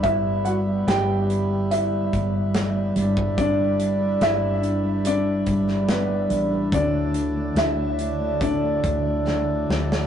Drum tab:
HH |x-x-x-x-x-x-x-x-|x-x-x-x-x-x-x-x-|x-x-x-x-x-x-----|
SD |----o-------o---|----o------oo---|----o-------o-oo|
BD |o---------o----o|o---------o-----|o-------o-o-----|